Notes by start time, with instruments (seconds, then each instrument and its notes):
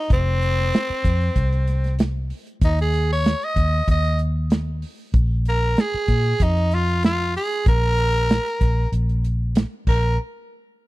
0.00 tenor saxophone D#4
0.10 fingered electric bass F1, tenor saxophone C4, kick, closed hi-hat
0.42 closed hi-hat
0.60 snare
0.73 snare, closed hi-hat
0.90 muted fingered electric bass stroke, closed hi-hat
1.04 fingered electric bass F2, kick, closed hi-hat
1.21 closed hi-hat
1.36 fingered electric bass C2, kick, closed hi-hat
1.53 closed hi-hat
1.67 snare, closed hi-hat
1.84 snare, closed hi-hat
1.99 snare, closed hi-hat
2.30 open hi-hat
2.47 closed hi-hat
2.62 fingered electric bass D#2, tenor saxophone D#4, kick, closed hi-hat
2.78 tenor saxophone G#4, closed hi-hat
2.93 closed hi-hat
3.13 tenor saxophone C#5
3.25 snare, closed hi-hat
3.42 tenor saxophone D#5, closed hi-hat
3.56 fingered electric bass D#2, kick, closed hi-hat
3.88 fingered electric bass D#2, tenor saxophone D#5, kick, closed hi-hat
4.05 closed hi-hat
4.19 closed hi-hat
4.50 snare, closed hi-hat
4.82 open hi-hat
5.14 fingered electric bass A#1, kick, closed hi-hat
5.45 tenor saxophone A#4, closed hi-hat
5.77 tenor saxophone G#4, snare, closed hi-hat
5.94 muted fingered electric bass stroke, closed hi-hat
6.08 fingered electric bass A#2, kick, closed hi-hat
6.25 closed hi-hat
6.40 fingered electric bass F2, tenor saxophone D#4, kick, closed hi-hat
6.57 closed hi-hat
6.71 tenor saxophone F4, closed hi-hat
6.89 closed hi-hat
7.03 tenor saxophone F4, snare, closed hi-hat
7.34 tenor saxophone G#4, open hi-hat
7.51 closed hi-hat
7.66 fingered electric bass A#1, tenor saxophone A#4, kick, closed hi-hat
7.83 closed hi-hat
7.98 closed hi-hat
8.29 snare, closed hi-hat
8.46 closed hi-hat
8.61 fingered electric bass A#1, kick, closed hi-hat
8.92 fingered electric bass A#1, closed hi-hat
9.09 closed hi-hat
9.24 closed hi-hat
9.55 snare, closed hi-hat
9.87 fingered electric bass A#1, tenor saxophone A#4, kick, crash